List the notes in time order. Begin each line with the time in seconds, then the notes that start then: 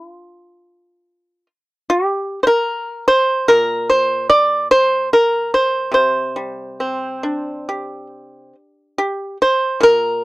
Already playing: E4
0.10 F4
1.90 G4
2.43 A#4 C5
3.08 C5
3.48 A#2 A#4
3.90 C5
4.30 D5
4.71 C5
5.13 A#4
5.54 C5
5.92 C3 C5
6.36 G3
6.80 C4
7.23 D4
7.69 G4
8.98 G4
9.42 C5
9.80 A#2 A#4